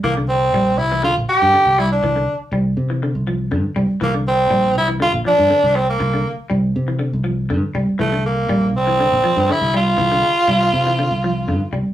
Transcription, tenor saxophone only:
\new Staff \with { instrumentName = "Tenor saxophone" } { \time 4/4 \key c \mixolydian \tempo 4 = 120 bes8 c'4 e'8 f'8 g'4 e'16 d'16~ | d'8. r2. r16 | bes8 c'4 e'8 f'8 d'4 c'16 bes16~ | bes8. r2. r16 |
a8 bes4 c'4. e'8 f'8~ | f'2.~ f'8 r8 | }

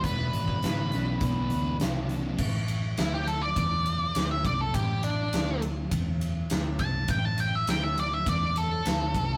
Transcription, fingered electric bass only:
\new Staff \with { instrumentName = "Fingered electric bass" } { \clef bass \time 4/4 \key a \minor \tempo 4 = 102 e,,8 gis,,8 gis,,8 b,,8 b,,8 d,8 c,4 | a,,4 d,4 e,4 d,8 c,8 | a,,4 d,4 e,4 d,8 c,8 | a,,4 d,4 e,4 d,8 c,8 | }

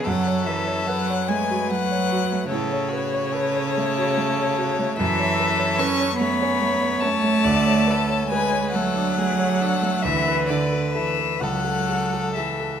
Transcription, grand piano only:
\new Staff \with { instrumentName = "Grand piano" } { \time 6/8 \key fis \minor \tempo 4. = 48 fis,16 cis''16 b'16 cis''16 b'16 cis''16 a16 fis'16 a16 cis''16 fis'16 a16 | a,16 cis''16 b'16 cis''16 b'16 cis''16 a16 fis'16 a16 cis''16 fis'16 a16 | \key a \major fis,16 cis''16 b'16 cis''16 b'16 cis''16 a16 cis'16 a16 cis''16 cis'16 a16 | d,16 cis''16 b'16 cis''16 b'16 cis''16 a16 d'16 a16 cis''16 d'16 a16 |
d,16 b'16 a'16 b'16 a'16 b'16 cis,16 a'16 gis'16 a'16 gis'16 a'16 | }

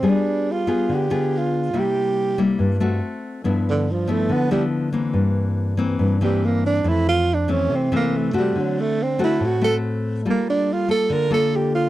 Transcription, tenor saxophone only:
\new Staff \with { instrumentName = "Tenor saxophone" } { \time 4/4 \key g \dorian \tempo 4 = 141 d'4 f'4 g'4 f'4 | g'4. r2 r8 | r8 d8 f8 a8 b8 g8 r4 | r2 r8 g8 bes8 d'8 |
e'8 f'8 d'8 des'8 c'8 bes8 a8 g8 | fis8 a8 c'8 e'8 fis'8 a'8 r4 | bes8 d'8 f'8 a'8 bes'8 a'8 g'8 f'8 | }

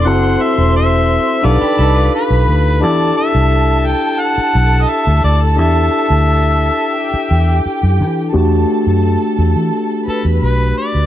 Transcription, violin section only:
\new Staff \with { instrumentName = "Violin section" } { \time 4/4 \key e \minor \tempo 4 = 87 <c'' c'''>2 <b' b''>2 | <a' a''>1~ | <a' a''>2 <g' g''>2 | <a' a''>2~ <a' a''>8 <b' b''>4. | }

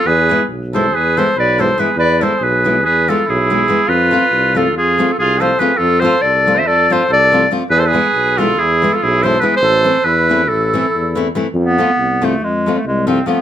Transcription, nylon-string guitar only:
\new Staff \with { instrumentName = "Nylon-string guitar" } { \time 9/8 \key f \lydian \tempo 4. = 94 r8 <e gis b e'>8 r8 <e gis b e'>8 r8 <e gis b e'>8 r8 <e gis b e'>8 <e gis b e'>8 | r8 <e gis b e'>8 r8 <e gis b e'>8 r8 <e gis b e'>8 r8 <e gis b e'>8 <e gis b e'>8 | r8 <f a c' f'>8 r8 <f a c' f'>8 r8 <f a c' f'>8 r8 <f a c' f'>8 <f a c' f'>8 | r8 <f a c' f'>8 r8 <f a c' f'>8 r8 <f a c' f'>8 r8 <f a c' f'>8 <f a c' f'>8 |
r8 <e gis b e'>8 r8 <e gis b e'>8 r8 <e gis b e'>8 r8 <e gis b e'>8 <e gis b e'>8 | r8 <e a c' e'>8 r8 <e a c' e'>8 r8 <e a c' e'>8 r8 <e a c' e'>8 <e a c' e'>8 | r8 <f a c' f'>8 r8 <f a c' f'>8 r8 <f a c' f'>8 r8 <f a c' f'>8 <f a c' f'>8 | }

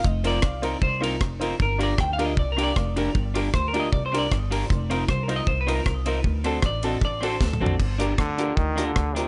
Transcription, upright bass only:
\new Staff \with { instrumentName = "Upright bass" } { \clef bass \time 4/4 \key g \minor \tempo 4 = 155 f,,4 c,4 c,4 f,,4 | g,,4 d,4 c,4 f,,4 | g,,4 d,4 c,4 g,,4 | f,,4 c,4 c,4 c,4 |
d,4 a,,4 a,,4 d,8 bes,,8 | g,,4 d,4 d,4 d,4 | }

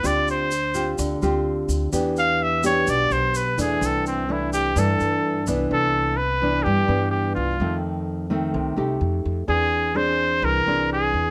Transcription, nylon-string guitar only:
\new Staff \with { instrumentName = "Nylon-string guitar" } { \time 4/4 \key c \major \tempo 4 = 127 << { <c' f' g'>4 r8 <c' f' g'>4 <c' f' g'>4. | <b d' g'>4. <b d' g'>2 <e a d'>8~ | <e a d'>4 <e a d'>4 <e a d'>4. <e b d'>8~ | <e b d'>4 r8 <e b d'>4 <e b d'>4. |
<ees a c'>4. <ees a c'>4 <a ees' g'>4. | <bis d' gis'>4 <bis d' gis'>4. <bis d' gis'>4. | } \\ { d2 d2 | e2 b,2 | c2 g,2 | c2 g,2 |
f,2 c4 r4 | e2 e2 | } >> }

